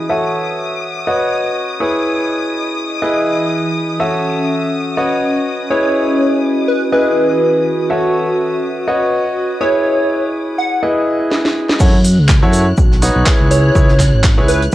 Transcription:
0.00 3.99 C#4 medium
0.00 5.70 F#4 medium
0.00 5.70 B4 medium
0.00 10.83 D#6 medium
0.10 1.04 F#4 medium
0.10 1.04 A4 medium
0.10 1.04 C#5 medium
0.10 1.04 E5 medium
1.07 1.78 F#4 medium
1.07 1.78 B4 medium
1.07 1.78 C#5 medium
1.07 1.78 D#5 medium
1.41 4.00 D#5 medium
1.80 3.00 E4 medium
1.80 3.00 G#4 medium
1.80 3.00 B4 medium
1.80 3.00 C#5 medium
3.02 4.00 E3 medium
3.02 3.97 E4 medium
3.02 3.97 G#4 medium
3.02 3.97 B4 medium
3.02 3.97 D#5 medium
4.00 10.83 C#4 medium
4.00 4.95 F#4 medium
4.00 4.95 A4 medium
4.00 4.95 C#5 medium
4.00 4.95 E5 medium
4.20 4.97 E5 medium
4.97 5.68 F#4 medium
4.97 5.68 B4 medium
4.97 5.68 C#5 medium
4.97 5.68 D#5 medium
5.20 7.90 D#5 medium
5.70 6.90 E4 medium
5.70 6.90 G#4 medium
5.70 6.90 B4 medium
5.70 6.90 C#5 medium
5.70 6.39 C#5 medium
5.83 10.83 F#4 medium
5.97 10.83 B4 medium
6.68 6.85 B4 medium
6.92 7.90 E3 medium
6.92 7.87 E4 medium
6.92 7.87 G#4 medium
6.92 7.87 B4 medium
6.92 7.30 B4 medium
6.92 7.87 D#5 medium
7.90 8.85 F#4 medium
7.90 8.85 A4 medium
7.90 8.85 C#5 medium
7.90 8.85 E5 medium
8.10 8.87 E5 medium
8.88 9.58 F#4 medium
8.88 9.58 B4 medium
8.88 9.58 C#5 medium
8.88 9.58 D#5 medium
9.11 10.83 D#5 medium
9.61 10.80 E4 medium
9.61 10.80 G#4 medium
9.61 10.80 B4 medium
9.61 10.80 C#5 medium
9.61 10.30 C#5 medium
10.58 10.83 F#5 medium
10.83 11.78 E4 medium
10.83 11.78 G#4 medium
10.83 11.78 B4 medium
10.83 11.78 D#5 medium
11.31 snare medium
11.45 snare medium
11.69 snare medium
11.80 12.20 F#2 loud
11.80 11.95 E4 medium
11.80 11.95 F#4 medium
11.80 11.95 A4 medium
11.80 11.95 C#5 loud
11.80 14.75 F#6 medium
11.80 kick loud
11.80 crash loud
11.80 shaker medium
12.04 open hi-hat loud
12.04 shaker medium
12.18 12.44 C#2 loud
12.29 kick loud
12.29 snare loud
12.29 clap loud
12.29 shaker medium
12.43 12.73 F#2 medium
12.43 12.64 E4 medium
12.43 12.64 F#4 medium
12.43 12.64 A4 medium
12.43 12.64 C#5 loud
12.53 open hi-hat medium
12.53 shaker medium
12.77 13.10 B1 medium
12.77 kick loud
12.77 shaker medium
12.91 snare medium
13.02 13.24 D#4 medium
13.02 13.24 F#4 medium
13.02 13.24 B4 medium
13.02 13.24 C#5 medium
13.02 open hi-hat loud
13.02 shaker medium
13.16 13.24 B1 loud
13.26 13.73 E4 medium
13.26 13.73 G#4 medium
13.26 13.73 B4 medium
13.26 13.73 C#5 medium
13.26 kick loud
13.26 snare loud
13.26 clap loud
13.26 shaker medium
13.40 13.71 C#2 medium
13.51 14.20 C#5 medium
13.51 open hi-hat medium
13.51 shaker medium
13.75 14.15 C#2 loud
13.75 13.90 E4 loud
13.75 13.90 G#4 medium
13.75 13.90 B4 medium
13.75 13.90 C#5 loud
13.75 kick loud
13.75 shaker medium
13.88 snare soft
13.99 kick medium
13.99 clap medium
13.99 open hi-hat loud
13.99 shaker medium
14.13 14.39 G#1 loud
14.24 kick loud
14.24 snare loud
14.24 clap loud
14.24 shaker medium
14.38 14.68 C#2 medium
14.38 14.59 E4 medium
14.38 14.59 G#4 medium
14.38 14.59 B4 medium
14.38 14.59 C#5 medium
14.48 14.66 B4 loud
14.48 open hi-hat medium
14.48 shaker medium
14.62 closed hi-hat soft

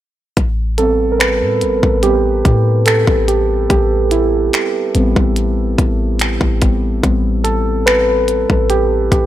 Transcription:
0.37 1.43 A1 loud
0.37 kick loud
0.37 closed hi-hat medium
0.78 2.02 G3 medium
0.78 2.02 B3 soft
0.78 2.03 C4 medium
0.78 0.92 A4 medium
0.78 closed hi-hat medium
1.12 1.19 A#4 medium
1.19 2.06 B4 loud
1.19 finger snap loud
1.19 closed hi-hat medium
1.41 1.64 A2 medium
1.61 1.82 A1 medium
1.61 closed hi-hat medium
1.83 2.43 A1 medium
1.83 kick medium
2.03 2.41 G3 soft
2.03 2.41 B3 soft
2.03 2.41 C4 medium
2.03 2.43 G4 loud
2.03 closed hi-hat medium
2.45 3.05 A2 loud
2.45 2.84 G4 medium
2.45 kick medium
2.45 closed hi-hat medium
2.86 3.29 A4 loud
2.86 finger snap loud
2.86 closed hi-hat medium
3.07 3.67 A1 loud
3.07 kick medium
3.28 3.68 G4 medium
3.28 closed hi-hat medium
3.70 4.50 A1 loud
3.70 4.13 G4 medium
3.70 kick loud
3.70 closed hi-hat medium
4.11 6.58 E4 medium
4.11 closed hi-hat medium
4.53 finger snap loud
4.53 closed hi-hat medium
4.95 5.15 A1 loud
4.95 6.16 G3 medium
4.95 6.16 B3 medium
4.95 6.17 C4 medium
4.95 closed hi-hat medium
5.16 5.76 A1 medium
5.16 kick medium
5.36 closed hi-hat medium
5.78 6.38 A1 loud
5.78 kick loud
5.78 closed hi-hat medium
6.19 finger snap loud
6.19 closed hi-hat medium
6.41 7.01 A1 loud
6.41 kick medium
6.62 6.99 G3 soft
6.62 7.00 B3 soft
6.62 7.00 C4 medium
6.62 kick medium
6.62 closed hi-hat medium
7.03 8.45 A1 loud
7.03 8.24 G3 medium
7.03 8.25 B3 soft
7.03 8.25 C4 medium
7.03 kick loud
7.03 closed hi-hat medium
7.44 7.87 A4 loud
7.44 closed hi-hat medium
7.86 8.72 B4 loud
7.86 finger snap loud
7.86 closed hi-hat medium
8.28 closed hi-hat medium
8.50 9.10 A1 medium
8.50 kick medium
8.70 9.10 G4 loud
8.70 closed hi-hat medium
9.12 9.26 A1 loud
9.12 9.26 G4 medium
9.12 kick medium
9.12 closed hi-hat medium

